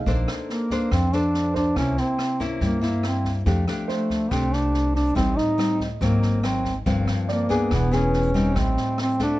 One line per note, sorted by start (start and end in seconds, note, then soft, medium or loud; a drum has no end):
0.00 0.37 D#4 soft
0.00 0.24 B4 soft
0.00 0.50 F5 soft
0.06 0.26 A#1 medium
0.06 0.89 A#3 soft
0.06 0.67 D4 soft
0.06 0.67 A4 soft
0.06 0.67 C5 medium
0.06 kick soft
0.06 snare soft
0.28 cross-stick medium
0.28 snare soft
0.50 0.95 A#3 medium
0.50 snare soft
0.70 1.10 D4 medium
0.70 1.10 A4 soft
0.70 1.10 C5 medium
0.70 kick soft
0.70 snare soft
0.92 1.72 F2 medium
0.92 1.75 F3 soft
0.92 1.16 C4 medium
0.92 kick medium
0.92 cross-stick soft
0.92 snare soft
1.13 1.73 D4 soft
1.13 1.56 D4 medium
1.13 1.73 A4 medium
1.13 1.73 C5 medium
1.13 snare soft
1.34 snare soft
1.54 1.75 D4 medium
1.54 1.94 C5 soft
1.54 kick soft
1.54 snare soft
1.76 1.96 C2 medium
1.76 2.60 C3 soft
1.76 2.37 A#3 soft
1.76 2.00 C#4 medium
1.76 2.38 E4 medium
1.76 kick medium
1.76 cross-stick medium
1.76 snare soft
1.97 2.41 C4 medium
1.97 snare soft
2.19 cross-stick medium
2.19 snare soft
2.40 2.79 A#3 medium
2.40 2.79 C#4 medium
2.40 2.80 E4 medium
2.40 kick soft
2.40 snare soft
2.61 3.42 G2 medium
2.61 3.44 G3 soft
2.61 3.02 A#3 medium
2.61 kick medium
2.61 snare soft
2.81 3.42 A#3 medium
2.81 3.43 E4 medium
2.81 snare soft
3.03 3.35 C4 medium
3.03 cross-stick medium
3.03 snare soft
3.25 kick soft
3.25 snare soft
3.46 3.66 F2 medium
3.46 4.29 F3 soft
3.46 3.64 A3 soft
3.46 3.64 D4 soft
3.46 3.64 G4 medium
3.46 kick medium
3.46 snare soft
3.68 4.28 A3 medium
3.68 4.28 D4 medium
3.68 4.28 G4 medium
3.68 cross-stick medium
3.68 snare soft
3.88 4.33 A3 medium
3.88 5.16 C5 soft
3.88 snare soft
4.10 kick soft
4.10 snare soft
4.31 5.12 C2 medium
4.31 5.14 C3 soft
4.31 5.12 A3 soft
4.31 4.55 C4 medium
4.31 5.13 D4 soft
4.31 5.13 G4 medium
4.31 kick medium
4.31 cross-stick soft
4.31 snare soft
4.53 4.94 D4 medium
4.53 snare soft
4.74 snare soft
4.95 5.15 D4 medium
4.95 kick soft
4.95 snare soft
5.15 5.36 A1 medium
5.15 5.98 A2 soft
5.15 5.55 G3 soft
5.15 5.55 C4 soft
5.15 5.38 C4 medium
5.15 5.55 D#4 medium
5.15 kick medium
5.15 cross-stick medium
5.15 snare soft
5.37 5.80 D#4 medium
5.37 6.18 D#5 soft
5.37 snare soft
5.58 5.87 G3 medium
5.58 5.87 C4 soft
5.58 5.87 D#4 medium
5.58 cross-stick medium
5.58 snare soft
5.80 kick soft
5.80 snare soft
6.01 6.82 G#1 medium
6.01 6.84 G#2 medium
6.01 6.40 F#3 soft
6.01 6.47 A#3 medium
6.01 6.41 A#3 soft
6.01 6.41 C4 medium
6.01 kick medium
6.01 snare soft
6.22 snare soft
6.43 6.71 F#3 soft
6.43 6.71 A#3 soft
6.43 6.71 C4 medium
6.43 6.76 C4 medium
6.43 cross-stick medium
6.43 snare soft
6.65 kick soft
6.65 snare soft
6.86 7.06 G1 medium
6.86 7.69 G2 soft
6.86 7.46 F3 soft
6.86 7.46 A#3 soft
6.86 7.47 C4 medium
6.86 kick medium
6.86 snare soft
7.07 cross-stick medium
7.07 snare soft
7.28 7.76 A#3 medium
7.28 7.88 D5 soft
7.28 snare soft
7.49 7.88 B3 medium
7.49 7.89 D4 soft
7.49 7.89 G#4 medium
7.49 kick soft
7.49 snare soft
7.71 8.52 E1 medium
7.71 8.34 E3 medium
7.71 7.97 B3 medium
7.71 kick medium
7.71 cross-stick medium
7.71 snare soft
7.91 8.31 B3 medium
7.91 8.60 C#4 medium
7.91 8.31 G#4 medium
7.91 snare soft
8.14 snare soft
8.34 9.16 G3 medium
8.34 9.16 C4 medium
8.34 9.16 D#4 medium
8.34 kick soft
8.34 snare soft
8.56 8.76 A1 medium
8.56 9.39 A2 soft
8.56 9.00 C4 medium
8.56 kick medium
8.56 cross-stick medium
8.56 snare soft
8.77 snare soft
8.98 9.19 C4 medium
8.98 cross-stick medium
8.98 snare soft
9.19 9.39 A3 medium
9.19 9.39 C4 medium
9.19 9.39 D4 medium
9.19 9.39 F#4 medium
9.19 kick soft
9.19 snare soft